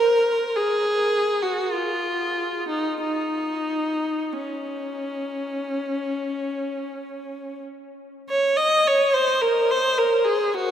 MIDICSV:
0, 0, Header, 1, 2, 480
1, 0, Start_track
1, 0, Key_signature, -5, "major"
1, 0, Tempo, 1153846
1, 724, Tempo, 1271186
1, 1203, Time_signature, 4, 2, 24, 8
1, 1204, Tempo, 1315789
1, 2164, Tempo, 1273885
1, 2644, Tempo, 1382488
1, 3124, Tempo, 1125704
1, 4152, End_track
2, 0, Start_track
2, 0, Title_t, "Viola"
2, 0, Program_c, 0, 41
2, 0, Note_on_c, 0, 70, 87
2, 232, Note_on_c, 0, 68, 83
2, 241, Note_off_c, 0, 70, 0
2, 591, Note_on_c, 0, 66, 72
2, 597, Note_off_c, 0, 68, 0
2, 719, Note_off_c, 0, 66, 0
2, 720, Note_on_c, 0, 65, 70
2, 1077, Note_off_c, 0, 65, 0
2, 1080, Note_on_c, 0, 63, 61
2, 1200, Note_off_c, 0, 63, 0
2, 1205, Note_on_c, 0, 63, 68
2, 1674, Note_off_c, 0, 63, 0
2, 1683, Note_on_c, 0, 61, 58
2, 2887, Note_off_c, 0, 61, 0
2, 3120, Note_on_c, 0, 73, 78
2, 3233, Note_off_c, 0, 73, 0
2, 3236, Note_on_c, 0, 75, 92
2, 3360, Note_off_c, 0, 75, 0
2, 3368, Note_on_c, 0, 73, 81
2, 3479, Note_on_c, 0, 72, 91
2, 3486, Note_off_c, 0, 73, 0
2, 3599, Note_on_c, 0, 70, 80
2, 3601, Note_off_c, 0, 72, 0
2, 3720, Note_off_c, 0, 70, 0
2, 3725, Note_on_c, 0, 72, 89
2, 3840, Note_on_c, 0, 70, 77
2, 3842, Note_off_c, 0, 72, 0
2, 3953, Note_on_c, 0, 68, 81
2, 3960, Note_off_c, 0, 70, 0
2, 4077, Note_on_c, 0, 66, 98
2, 4078, Note_off_c, 0, 68, 0
2, 4152, Note_off_c, 0, 66, 0
2, 4152, End_track
0, 0, End_of_file